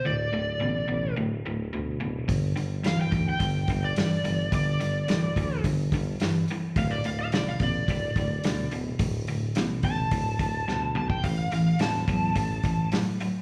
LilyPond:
<<
  \new Staff \with { instrumentName = "Electric slide guitar" } { \time 4/4 \key g \major \tempo 4 = 107 d''2 r2 | r4 f''16 g''8 g''4 d''4~ d''16 | d''2 r2 | f''16 d''16 f''16 f''16 d''16 f''16 d''2 r8 |
r4. a''2 a''16 g''16 | f''8 f''8 a''2 r4 | }
  \new Staff \with { instrumentName = "Overdriven electric guitar" } { \clef bass \time 4/4 \key g \major <d, a,>8 <d, a,>8 <d, b,>8 <d, b,>8 <d, a,>8 <d, a,>8 <d, b,>8 <d, b,>8 | <g, d>8 <g, d>8 <g, e>8 <g, e>8 <g, d>8 <g, d>8 <g, e>8 <g, e>8 | <g, d>8 <g, d>8 <g, e>8 <g, e>8 <g, d>8 <g, d>8 <g, e>8 <g, e>8 | <d, a,>8 <d, a,>8 <d, b,>8 <d, b,>8 <d, a,>8 <d, a,>8 <d, b,>8 <d, b,>8 |
<d, a,>8 <d, a,>8 <d, b,>8 <d, b,>8 <d, a,>8 <d, a,>8 <d, b,>8 <d, b,>8 | <a, e>8 <a, e>8 <a, fis>8 <a, fis>8 <a, e>8 <a, e>8 <a, fis>8 <a, fis>8 | }
  \new Staff \with { instrumentName = "Tuba" } { \clef bass \time 4/4 \key g \major d,,8 d,,8 a,,8 a,,8 d,,8 d,,8 d,8 d,,8 | g,,8 g,,8 d,,8 d,8 g,,8 g,,8 g,8 g,,8 | g,,8 g,,8 d,,8 d,8 g,,8 g,,8 g,8 r8 | d,,8 d,,8 a,,8 a,,8 d,,8 d,,8 d,8 d,,8 |
d,,8 d,,8 a,,8 a,,8 d,,8 d,,8 d,8 b,,8 | a,,8 a,,8 e,,8 e,8 a,,8 a,,8 a,8 r8 | }
  \new DrumStaff \with { instrumentName = "Drums" } \drummode { \time 4/4 r4 r4 r4 r4 | <hho bd>8 hho8 <hho sn>8 <hho bd>8 <hho bd>8 <hho bd>8 <hho sn>8 hho8 | <hho bd>8 hho8 <hho sn>8 <hho bd>8 <hho bd>8 <hho bd>8 <hho sn>8 hho8 | <hho bd>8 hho8 <hho sn>16 sn16 <hho bd>8 <hho bd>8 <hho bd>8 <hho sn>8 hho8 |
<hho bd>8 hho8 <hho sn>8 <hho bd>8 <hho bd>8 <hho bd>8 sn8 toml16 bd16 | <hho bd>8 hho8 <hho sn>16 sn16 <hho bd>8 <hho bd>8 <hho bd>8 <hho sn>8 hho8 | }
>>